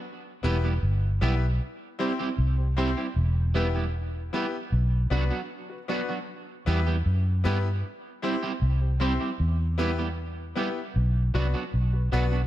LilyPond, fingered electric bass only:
\new Staff \with { instrumentName = "Fingered electric bass" } { \clef bass \time 4/4 \key e \minor \tempo 4 = 77 r8 e,,8 g,,8 b,,8 r4 c,8. r16 | e,,4. r8 b,,8 c,16 r4 r16 | r8 e,8 fis,8 g,8 r4 c,8. r16 | e,4. r8 b,,8 c,16 r16 b,,8 b,,8 | }